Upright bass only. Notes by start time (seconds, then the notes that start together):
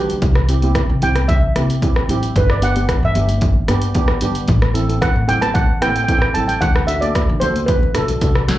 Already playing: D2
0.22 C2
0.89 C3
1.02 C2
1.55 C3
2.09 A1
2.36 G1
3.03 G2
3.15 G1
3.69 G2
4.22 G1
4.48 A1
5.16 A2
5.29 A1
5.82 A2
6.35 A1
6.61 D2
7.29 D3
7.42 D2
7.96 B1
8.22 C2
8.49 D2